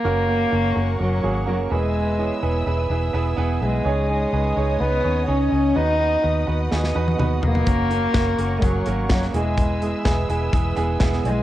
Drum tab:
HH |----------------|----------------|----------------|----------------|
SD |----------------|----------------|----------------|--------oo------|
T1 |----------------|----------------|----------------|-----------o----|
T2 |----------------|----------------|----------------|------------o---|
FT |----------------|----------------|----------------|--------------oo|
BD |----------------|----------------|----------------|----------------|

HH |x-x-x-x-x-x-x-x-|x-x-x-x-x-x-x-x-|
SD |----o-------oo--|----o-------oo--|
T1 |----------------|----------------|
T2 |----------------|----------------|
FT |----------------|----------------|
BD |o---o---o---o---|o---o---o---o---|